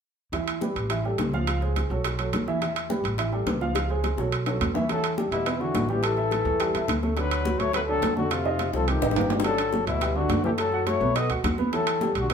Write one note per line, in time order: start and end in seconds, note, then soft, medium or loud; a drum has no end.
0.32 0.72 E2 medium
0.32 0.56 E3 medium
0.32 0.56 E4 medium
0.32 0.57 E5 medium
0.32 high bongo medium
0.32 high conga soft
0.32 high timbale medium
0.48 high conga soft
0.48 high timbale medium
0.61 0.85 G3 medium
0.61 0.86 G4 soft
0.61 0.86 B4 medium
0.61 high bongo soft
0.61 high conga medium
0.76 1.16 A1 medium
0.76 high conga soft
0.76 high timbale medium
0.90 1.02 E3 medium
0.90 1.02 E4 medium
0.90 1.02 E5 medium
0.90 high bongo medium
0.90 high conga soft
0.90 high timbale medium
1.05 1.28 G3 medium
1.05 1.28 G4 medium
1.05 1.29 A4 medium
1.05 high conga soft
1.18 1.85 C#2 medium
1.18 high bongo medium
1.18 low bongo medium
1.18 high conga medium
1.18 high timbale medium
1.33 1.57 F3 medium
1.33 1.57 F4 medium
1.33 1.57 F5 medium
1.33 high conga medium
1.47 high bongo medium
1.47 high conga soft
1.47 high timbale medium
1.62 1.85 G#3 medium
1.62 1.85 G#4 medium
1.62 1.85 C5 medium
1.62 high bongo soft
1.62 high conga soft
1.76 high bongo soft
1.76 high conga soft
1.76 high timbale medium
1.90 2.30 B1 medium
1.90 2.14 F#3 medium
1.90 2.14 F#4 medium
1.90 2.14 A4 medium
1.90 high bongo soft
1.90 high conga soft
2.04 high bongo medium
2.04 high conga soft
2.04 high timbale medium
2.19 2.42 F#3 medium
2.19 2.42 F#4 medium
2.19 2.43 A4 medium
2.19 high conga soft
2.19 high timbale medium
2.33 2.99 E2 medium
2.33 high bongo medium
2.33 low bongo medium
2.33 high conga medium
2.33 high timbale medium
2.48 2.59 E3 medium
2.48 2.59 E4 medium
2.48 2.60 E5 medium
2.48 high bongo soft
2.48 high conga medium
2.61 2.85 E3 medium
2.61 2.85 E4 medium
2.61 2.85 E5 medium
2.61 high bongo medium
2.61 high conga soft
2.61 high timbale medium
2.76 high conga soft
2.76 high timbale medium
2.90 3.13 G3 medium
2.90 3.13 G4 medium
2.90 3.14 B4 medium
2.90 high bongo medium
2.90 high conga medium
3.04 3.44 A1 medium
3.04 high conga soft
3.04 high timbale medium
3.18 3.30 E3 medium
3.18 3.30 E4 medium
3.18 3.30 E5 medium
3.18 high bongo medium
3.18 high conga soft
3.18 high timbale medium
3.32 3.56 G3 medium
3.32 3.56 G4 medium
3.32 3.56 A4 medium
3.32 high conga soft
3.46 4.12 C#2 medium
3.46 high bongo medium
3.46 low bongo medium
3.46 high conga medium
3.46 high timbale medium
3.46 low timbale medium
3.61 3.85 F3 medium
3.61 3.85 F4 medium
3.61 3.85 F5 medium
3.61 high conga medium
3.75 high bongo medium
3.75 high conga soft
3.75 high timbale medium
3.90 4.13 G#3 medium
3.90 4.13 G#4 medium
3.90 4.13 C5 medium
3.90 high conga soft
4.04 high bongo medium
4.04 high conga soft
4.04 high timbale medium
4.17 4.58 B1 medium
4.17 4.42 F#3 medium
4.17 4.42 F#4 medium
4.17 4.42 A4 medium
4.17 high bongo medium
4.17 high conga soft
4.32 high conga soft
4.32 high timbale medium
4.46 4.70 F#3 medium
4.46 4.70 F#4 medium
4.46 4.71 A4 medium
4.46 low bongo medium
4.46 high conga soft
4.46 high timbale medium
4.61 5.27 E2 medium
4.61 high conga medium
4.61 high timbale medium
4.61 low timbale medium
4.74 4.86 E3 medium
4.74 4.86 E4 medium
4.74 4.87 E5 medium
4.74 low bongo medium
4.74 high conga medium
4.89 5.12 E3 medium
4.89 5.16 F#3 medium
4.89 5.13 E4 medium
4.89 5.16 A4 medium
4.89 high bongo medium
4.89 high conga soft
4.89 high timbale medium
5.04 high conga soft
5.04 high timbale medium
5.18 5.41 G3 medium
5.18 5.41 G4 medium
5.18 high bongo soft
5.18 high conga medium
5.32 5.71 E2 medium
5.32 5.64 B2 medium
5.32 5.62 E4 medium
5.32 high conga soft
5.32 high timbale medium
5.46 5.58 B3 medium
5.46 5.58 B4 medium
5.46 high bongo medium
5.46 high conga soft
5.46 high timbale medium
5.61 5.91 D3 medium
5.61 5.84 E3 medium
5.61 5.84 E4 medium
5.61 5.91 F#4 medium
5.61 high conga soft
5.74 6.40 A1 medium
5.74 high bongo medium
5.74 low bongo medium
5.74 high conga medium
5.74 high timbale medium
5.89 6.04 E3 medium
5.89 6.13 G3 medium
5.89 6.05 G4 medium
5.89 6.13 G4 medium
5.89 high conga medium
6.03 7.03 E3 medium
6.03 7.03 A4 medium
6.03 high bongo medium
6.03 high timbale medium
6.17 6.41 E4 medium
6.17 6.41 E5 medium
6.17 high bongo soft
6.17 high conga soft
6.31 high bongo soft
6.31 high conga medium
6.31 high timbale medium
6.45 6.72 E2 medium
6.45 6.58 A3 medium
6.45 6.58 A4 medium
6.45 high bongo soft
6.45 high conga soft
6.60 6.72 G3 medium
6.60 6.72 G4 medium
6.60 high bongo medium
6.60 high conga soft
6.60 high timbale medium
6.74 6.87 E2 medium
6.74 6.98 E4 medium
6.74 6.98 E5 medium
6.74 high conga soft
6.74 high timbale medium
6.88 7.54 D2 medium
6.88 high bongo medium
6.88 low bongo medium
6.88 high conga medium
6.88 high timbale medium
7.03 7.15 A3 medium
7.03 7.15 A4 medium
7.03 high bongo soft
7.03 high conga medium
7.17 7.40 D3 medium
7.17 7.61 F#3 medium
7.17 7.40 D4 medium
7.17 7.61 B4 medium
7.17 high bongo medium
7.17 high conga soft
7.17 high timbale medium
7.31 high conga soft
7.31 high timbale medium
7.45 7.69 F#3 medium
7.45 7.69 F#4 medium
7.45 high bongo medium
7.45 high conga medium
7.59 7.99 D2 medium
7.59 7.73 A3 medium
7.59 7.74 C#5 medium
7.59 high conga soft
7.59 high timbale medium
7.73 7.80 F#3 medium
7.73 7.86 A3 medium
7.73 7.86 A4 medium
7.73 7.81 B4 medium
7.73 high bongo medium
7.73 high conga soft
7.73 high timbale medium
7.88 8.12 D3 medium
7.88 8.15 F#3 medium
7.88 8.12 D4 medium
7.88 8.15 A4 medium
7.88 high conga soft
8.02 8.68 F2 medium
8.02 high bongo medium
8.02 low bongo medium
8.02 high conga medium
8.02 high timbale medium
8.02 low timbale medium
8.17 8.33 D3 medium
8.17 8.40 A3 medium
8.17 8.33 F#4 medium
8.17 8.40 A4 medium
8.17 high conga medium
8.31 8.73 C3 medium
8.31 8.74 F4 medium
8.31 high bongo medium
8.31 high conga soft
8.31 high timbale medium
8.45 8.69 D#4 medium
8.45 8.69 D#5 medium
8.45 high bongo soft
8.45 high conga soft
8.59 high bongo soft
8.59 high conga medium
8.59 high timbale medium
8.73 9.00 C2 medium
8.73 8.90 F3 medium
8.73 8.85 C4 medium
8.73 8.89 A4 medium
8.73 8.86 C5 medium
8.73 high bongo medium
8.73 high conga soft
8.88 9.31 D#3 medium
8.88 9.00 A3 medium
8.88 9.31 G4 medium
8.88 9.00 A4 medium
8.88 high conga soft
8.88 high timbale medium
9.02 9.15 A1 medium
9.02 9.26 D#4 medium
9.02 9.26 D#5 medium
9.02 low bongo medium
9.02 high conga soft
9.02 high timbale medium
9.11 low bongo medium
9.16 9.82 G1 medium
9.16 high conga medium
9.16 high timbale medium
9.21 low bongo medium
9.30 9.43 G3 medium
9.30 9.43 G4 medium
9.30 low bongo medium
9.30 high conga medium
9.30 low timbale medium
9.40 low bongo medium
9.44 9.69 D3 medium
9.44 9.84 F#3 medium
9.44 9.69 D4 medium
9.44 9.84 A4 medium
9.44 high bongo medium
9.44 high conga soft
9.44 high timbale medium
9.58 high conga soft
9.58 high timbale medium
9.73 9.97 F#3 medium
9.73 9.97 F#4 medium
9.73 high bongo medium
9.73 high conga medium
9.87 10.27 D2 medium
9.87 10.17 B2 medium
9.87 10.18 E4 medium
9.87 high conga soft
9.87 high timbale medium
10.01 10.14 G3 medium
10.01 10.14 G4 medium
10.01 high bongo medium
10.01 high conga soft
10.01 high timbale medium
10.15 10.43 D3 medium
10.15 10.39 D3 medium
10.15 10.39 D4 medium
10.15 10.44 F#4 medium
10.15 high conga soft
10.29 10.95 F#2 medium
10.29 high bongo medium
10.29 low bongo medium
10.29 high conga medium
10.29 high timbale medium
10.29 low timbale medium
10.44 10.50 E3 medium
10.44 10.68 A3 medium
10.44 10.51 G4 medium
10.44 10.68 A4 medium
10.44 high conga medium
10.58 10.89 F#3 medium
10.58 10.89 A4 medium
10.58 high bongo medium
10.58 high timbale medium
10.72 10.97 F#4 medium
10.72 10.97 F#5 medium
10.72 high bongo soft
10.72 high conga soft
10.87 11.17 A3 medium
10.87 11.18 C#5 medium
10.87 high bongo soft
10.87 high conga medium
10.87 high timbale medium
11.00 11.27 B1 medium
11.00 11.13 B3 medium
11.00 11.13 B4 medium
11.00 high bongo soft
11.00 high conga soft
11.15 11.28 A3 medium
11.15 11.30 B3 medium
11.15 11.28 A4 medium
11.15 11.30 D#5 medium
11.15 high bongo medium
11.15 high conga soft
11.15 high timbale medium
11.30 11.43 D#2 medium
11.30 11.54 F#4 medium
11.30 11.54 F#5 medium
11.30 high conga soft
11.30 high timbale medium
11.44 12.10 E2 medium
11.44 high bongo medium
11.44 low bongo medium
11.44 high conga medium
11.44 high timbale medium
11.58 11.70 B3 medium
11.58 11.70 B4 medium
11.58 high bongo soft
11.58 high conga medium
11.73 11.96 E3 medium
11.73 12.13 F#3 medium
11.73 11.96 E4 medium
11.73 12.13 A4 medium
11.73 high bongo medium
11.73 high conga soft
11.73 high timbale medium
11.86 high conga soft
11.86 high timbale medium
12.01 12.25 G3 medium
12.01 12.25 G4 medium
12.01 high bongo medium
12.01 high conga medium
12.15 12.34 B1 medium
12.15 high conga soft
12.15 high timbale medium
12.20 12.33 D3 medium
12.20 12.32 F#4 medium
12.30 12.34 B3 medium
12.30 12.34 B4 medium
12.30 high bongo medium
12.30 high conga soft
12.30 high timbale medium